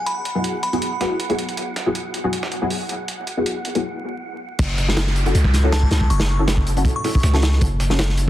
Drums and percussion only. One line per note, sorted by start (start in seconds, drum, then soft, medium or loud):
0.06 closed hi-hat medium
0.25 closed hi-hat medium
0.44 closed hi-hat medium
0.63 closed hi-hat medium
0.73 closed hi-hat soft
0.82 closed hi-hat medium
1.01 snare soft
1.01 closed hi-hat medium
1.20 closed hi-hat medium
1.30 closed hi-hat soft
1.39 closed hi-hat medium
1.49 closed hi-hat soft
1.57 closed hi-hat medium
1.76 snare soft
1.76 closed hi-hat medium
1.95 closed hi-hat medium
2.14 closed hi-hat medium
2.33 closed hi-hat medium
2.43 snare soft
2.52 closed hi-hat medium
2.70 open hi-hat medium
2.89 closed hi-hat medium
3.08 closed hi-hat medium
3.27 closed hi-hat medium
3.46 closed hi-hat medium
3.65 closed hi-hat medium
3.75 closed hi-hat soft
4.59 kick loud
4.59 closed hi-hat loud
4.59 closed hi-hat medium
4.59 crash medium
4.78 snare soft
4.78 closed hi-hat medium
4.89 snare medium
4.97 snare loud
4.97 closed hi-hat medium
5.07 snare soft
5.16 closed hi-hat medium
5.26 closed hi-hat soft
5.35 closed hi-hat medium
5.44 kick loud
5.44 snare medium
5.53 snare soft
5.53 closed hi-hat medium
5.72 snare loud
5.72 closed hi-hat medium
5.72 open hi-hat medium
5.83 kick medium
5.91 snare loud
5.91 closed hi-hat medium
6.01 kick medium
6.10 closed hi-hat medium
6.20 snare medium
6.20 closed hi-hat medium
6.29 closed hi-hat medium
6.48 snare loud
6.48 closed hi-hat medium
6.57 kick medium
6.67 closed hi-hat medium
6.77 closed hi-hat soft
6.85 kick loud
6.85 closed hi-hat medium
7.04 snare soft
7.04 closed hi-hat medium
7.04 open hi-hat medium
7.15 kick medium
7.23 snare loud
7.23 closed hi-hat medium
7.34 snare soft
7.34 closed hi-hat soft
7.42 snare loud
7.42 closed hi-hat medium
7.52 snare soft
7.52 closed hi-hat soft
7.61 kick loud
7.61 closed hi-hat medium
7.61 closed hi-hat loud
7.80 snare soft
7.80 closed hi-hat medium
7.90 snare soft
7.99 snare loud
7.99 closed hi-hat medium
8.09 snare soft
8.17 closed hi-hat medium